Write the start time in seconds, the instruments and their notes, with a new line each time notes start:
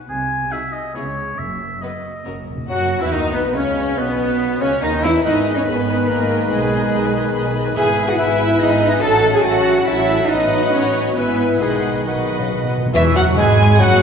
0.09 double bass section C2, cello section C3, oboe G#5
0.52 viola section D#4, violin section F#4 G#4, oboe E5
0.72 oboe D#5
0.95 double bass section C#2, cello section C#3, viola section B3, violin section E4 G#4, oboe C#5
1.38 double bass section F#1, timpani F#2, cello section F#2, oboe E5
1.82 viola section B3, violin section F#4 B4, oboe D#5
2.26 double bass section F#1, cello section F#2, timpani F#2, viola section C#4, violin section F#4 A#4
2.34 timpani F#2
2.42 timpani F#2
2.50 timpani F#2
2.57 timpani F#2
2.69 double bass section F#2, bassoon F#3, french horn section F#4, oboe F#4, viola section F#4, cello section F#4, violin section F#4 F#5, flute F#5, clarinet F#5
3.01 double bass section E2, bassoon E3, violin section E4 E5, oboe E4, french horn section E4, viola section E4, cello section E4, flute E5, clarinet E5
3.12 double bass section D#2, bassoon D#3, oboe D#4, french horn section D#4, cello section D#4, violin section D#4 D#5, viola section D#4, flute D#5, clarinet D#5
3.33 double bass section B1, bassoon B2, oboe B3, viola section B3, french horn section B3, cello section B3, violin section B3 B4, flute B4, clarinet B4
3.54 double bass section C#2, bassoon C#3, oboe C#4, violin section C#4 C#5, cello section C#4, french horn section C#4, viola section C#4, flute C#5, clarinet C#5
3.97 double bass section B1, bassoon B2, viola section B3, oboe B3, cello section B3, french horn section B3, violin section B3 B4, flute B4, clarinet B4
4.61 double bass section C#2, bassoon C#3, oboe C#4, violin section C#4 C#5, viola section C#4, cello section C#4, french horn section C#4, flute C#5, clarinet C#5
4.82 double bass section D#2, bassoon D#3, violin section D#4 D#5, viola section D#4, french horn section D#4, cello section D#4, oboe D#4, clarinet D#5, flute D#5
5.02 double bass section E2, bassoon E3, viola section E4, violin section E4 E5, oboe E4, french horn section E4, cello section E4, clarinet E5, flute E5
5.24 double bass section G#1, bassoon D#3, french horn section B3 D#4, cello section D#4, viola section G#4 D#5, oboe B4, violin section D#5 B5, clarinet D#5, flute D#5
5.35 viola section B4, violin section G#5
5.45 viola section G#4 D#5, violin section B5
5.56 cello section C#4, viola section B4, flute C#5, clarinet C#5, violin section C#5 G#5
5.66 double bass section G#1, cello section B3, viola section G#4 D#5, flute B4, violin section B4 B5, clarinet B4
5.77 viola section B4, violin section G#5
5.87 viola section G#4 D#5, violin section B5
5.98 viola section B4, violin section G#5
6.08 double bass section G#1, cello section A#3, viola section G#4 D#5, violin section A#4 B5, flute A#4, clarinet A#4
6.19 viola section B4, violin section G#5
6.29 viola section G#4 D#5, violin section B5
6.39 viola section B4, violin section G#5
6.50 double bass section B1, cello section G#3, violin section G#4 B5, flute G#4, clarinet G#4, viola section G#4 D#5
6.60 viola section B4, violin section G#5
6.70 viola section G#4 D#5, violin section B5
6.80 viola section B4, violin section G#5
6.91 double bass section B1, viola section G#4 D#5, violin section B5
7.01 viola section B4, violin section G#5
7.13 viola section G#4 D#5, violin section B5
7.22 viola section B4, violin section G#5
7.33 double bass section B1, viola section G#4 D#5, violin section B5
7.43 viola section B4, violin section G#5
7.54 viola section G#4 D#5, violin section B5
7.64 viola section B4, violin section G#5
7.75 double bass section G#1, bassoon E3, french horn section B3 E4, viola section G#4 E5, cello section G#4, oboe B4, violin section G#5 B5, flute G#5, clarinet G#5
7.85 viola section B4 G#5, violin section G#5
7.96 viola section G#4 E5, violin section B5
8.07 cello section F#4, viola section B4 G#5, flute F#5, violin section F#5 G#5, clarinet F#5
8.17 double bass section G#1, bassoon E3, cello section E4, viola section G#4 E5, oboe B4, clarinet E5, violin section E5 B5, flute E5
8.28 viola section B4 G#5, violin section G#5
8.38 viola section G#4 E5, violin section B5
8.49 viola section B4 G#5, violin section G#5
8.60 double bass section G#1, cello section D#4, viola section G#4 E5, clarinet D#5, violin section D#5 B5, flute D#5
8.71 viola section B4 G#5, violin section G#5
8.81 viola section G#4 E5, violin section B5
8.92 viola section B4 G#5, violin section G#5
9.03 double bass section A1, bassoon F#3, french horn section C#4 F#4, viola section A4 E5, oboe A4, cello section A4, flute A5, clarinet A5, violin section A5
9.14 viola section C#5 F#5, violin section F#5
9.24 viola section A4 E5, violin section A5
9.34 cello section G#4, viola section C#5 F#5, violin section F#5 G#5, clarinet G#5, flute G#5
9.44 double bass section A1, bassoon F#3, cello section F#4, oboe A4, viola section A4 E5, violin section F#5 A5, clarinet F#5, flute F#5
9.55 viola section C#5 F#5, violin section F#5
9.66 viola section A4 E5, violin section A5
9.77 viola section C#5 F#5, violin section F#5
9.87 double bass section A1, bassoon F#3, cello section E4, oboe A4, viola section A4 E5, violin section E5 A5, flute E5, clarinet E5
9.99 viola section C#5 F#5, violin section F#5
10.09 viola section A4 E5, violin section A5
10.20 viola section C#5 F#5, violin section F#5
10.29 double bass section A1, bassoon F#3, french horn section B3 F#4, cello section D#4, oboe B4, viola section B4 D#5, violin section D#5 F#5, flute D#5, clarinet D#5
10.73 cello section C#4, clarinet C#5, flute C#5, violin section C#5
11.17 double bass section G#1, bassoon E3, cello section B3, french horn section B3 E4, violin section B4 G#5, viola section B4 E5, oboe B4, clarinet B4, flute B4
11.61 double bass section B1, timpani B2, bassoon D#3, cello section G#3, french horn section B3 D#4, violin section G#4 F#5, clarinet G#4, flute G#4, viola section B4 D#5, oboe B4
11.69 timpani B2
11.77 timpani B2
11.85 timpani B2
11.93 timpani B2
12.00 timpani B2
12.05 timpani B2, bassoon D#3, cello section F#3, french horn section B3 D#4, clarinet F#4, violin section F#4 F#5, flute F#4, oboe B4, viola section B4 D#5
12.16 timpani B2
12.24 timpani B2
12.32 timpani B2
12.39 timpani B2, bassoon C#3
12.47 timpani B2, bassoon B2
12.55 timpani B2
12.63 timpani B2
12.71 timpani B2
12.78 timpani B2
12.86 timpani B2
12.94 double bass section E1, cello section E2, timpani E2, viola section E3, french horn section E3, bassoon E3, clarinet E4, violin section E4 E5, oboe E5, trumpet section E5, flute C#6
13.15 double bass section F#1, cello section F#2, viola section F#3, bassoon F#3, french horn section F#3, clarinet F#4, violin section F#4 F#5, oboe F#5, trumpet section F#5
13.37 double bass section G#1, cello section G#2, french horn section G#3, viola section G#3, bassoon G#3, clarinet G#4, violin section G#4 G#5, trumpet section G#5, oboe G#5, flute B5
13.79 double bass section F#1, cello section F#2, bassoon F#3, french horn section F#3, viola section F#3, clarinet F#4, violin section F#4 F#5, trumpet section F#5, oboe F#5